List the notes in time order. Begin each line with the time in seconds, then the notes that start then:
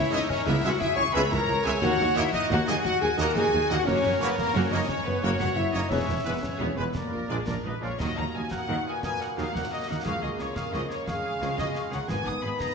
Already playing: E4 C#5 E5
0.11 C#2 B2 E3 G#3 C#4 D#4 D#5 E5
0.28 C#4 A#4 C#5, concert bass drum, snare
0.45 C#2 B3 E4 G#4 E5
0.63 C#2 B2 G#3 E4 F#4 E5 F#5
0.79 E4 G#4 E5, concert bass drum, snare
0.95 C#2 G#3 E4 C#5 C#6
1.13 C#2 B2 G#3 B3 G#4 B4 E5 B5
1.29 C#2 G#3 E4 A#4 C#5 A#5, concert bass drum, snare
1.47 C#2 E3 C#4
1.64 C#2 B2 G#3 E4 G#4 E5 G#5, snare
1.81 D#2 A#3 F#4 F#5, concert bass drum, snare
1.99 D#2 F#3 D#4, snare
2.15 D#2 A#2 D#3 A#3 E4 D#5 E5, snare
2.33 D#4 F#4 D#5, concert bass drum, snare
2.50 D#2 A#3 F#4 F#5, snare
2.66 D#2 A#2 F#3 A#3 D#4 G#4 D#5 G#5, snare
2.84 F#4 F#5, concert bass drum, snare
3.01 D#2 F#3 D#4 G#4 G#5
3.17 D#2 A#2 A#3 F#4 A#4 D#5 A#5, snare
3.34 D#2 F#3 D#4 G#4 G#5, concert bass drum, snare
3.53 D#2 D#3 A#3
3.70 D#2 A#2 F#3 A#3 D#4 F#4 D#5 F#5, snare
3.85 F#1 F#2 A#3 C#4 F#4 A#4 C#5, concert bass drum, snare
4.03 F#1 F#2 F#3 C#4
4.20 F#1 F#2 C#3 A#3 B3 B4 C#5
4.38 A#3 A#4, concert bass drum, snare
4.53 F#1 F#2 A#3 C#4 F#4 C#5
4.70 F#1 F#2 C#3 F#3 A#3 C#4 D#4 C#5 D#5
4.74 D#5
4.87 C#4 C#5, concert bass drum, snare
5.04 F#1 F#2 F#3 B3 C#4 B4
5.21 F#1 F#2 C#3 A#3 C#4 F#4 C#5
5.39 F#1 F#2 F#3 C#4 F#4 F#5, concert bass drum, snare
5.55 F#1 F#2 C#3 A#3 E4 E5
5.73 F#1 F#2 C#3 F#3 A#3 C#4 D#4 C#5 D#5, snare
5.89 E1 E2 B3 C#4 G#4 C#5 E5, concert bass drum, snare
6.07 E1 E2 G#3 E4
6.24 E1 E2 E3 G#3 B3 B4
6.41 C#4 C#5, concert bass drum, snare
6.59 E1 E2 B3 G#4
6.76 E1 E2 E3 G#3 B3 E4 B4
6.95 A#3 A#4 D5, concert bass drum, snare
7.11 A#1 A#2 A#3 F4
7.29 A#1 A#2 F3 G#3 D4 G#4 D5
7.47 A#1 A#2 A#3 D4 F4 A#4 D5, concert bass drum, snare
7.64 A#1 A#2 G#3 D4 D#4 B4 D#5
7.81 A#1 A#2 F3 G#3 A#3 F4 C#5 D5 F5
7.98 D#2 A#2 D#3 F#3 A#3 F#4 A#4 D#5 D#6, concert bass drum, snare, crash
8.16 D#2 D#3 A#3 D#4 A#4 C#5 A#5 D#6
8.33 D#2 D#3 F#3 A#3 A#4 B4 G#5 D#6
8.51 A#4 F#5 D#6, concert bass drum, snare
8.69 D#2 D#3 F#3 A#4 D#6
8.86 A#4 B4 G#5 D#6
9.03 A#4 B4 G#5 D#6, concert bass drum, snare
9.21 A#4 F#5 D#6, snare
9.37 D#2 D#3 F#3 G#4 A#4 F5 D#6, snare
9.54 D#2 D#3 A#3 D#4 A#4 F#5 D#6, concert bass drum, snare
9.71 F#4 A#4 D#5 D#6
9.87 D#2 D#3 A#3 D#4 A#4 F#5 D#6
10.04 C#2 C#3 F3 G#3 G#4 F5 C#6, concert bass drum, snare
10.21 C#2 C#3 C#4 F4 F#4 G#4 D#5 C#6
10.39 C#2 C#3 G#3 C#4 F4 G#4 C#5 C#6, snare
10.55 G#4 A#4 F5 C#6, concert bass drum, snare
10.72 C#2 C#3 F3 G#3 F#4 G#4 D#5 C#6, snare
10.89 F4 G#4 C#5 C#6, snare
11.07 G#3 G#4 F5 C#6, concert bass drum, snare
11.25 G#4 C#6
11.41 C#2 C#3 F3 G#3 G#4 C#6, snare
11.57 C#2 C#3 C#4 F4 F#4 G#4 D#5 C#6, concert bass drum, snare
11.73 G#4 F5 C#6, snare
11.91 C#2 C#3 C#4 F4 G#4 A#4 F#5 C#6, snare
12.08 G#1 G#2 D#3 G#3 A#3 B3 G#4 B4 G#5 D#6, concert bass drum, snare
12.25 G#1 G#2 B3 D#4 G#4 F#5 D#6
12.42 G#1 G#2 A#3 B3 G#4 D#5 B5 D#6
12.58 G#4 D#5 A#5 D#6, concert bass drum, snare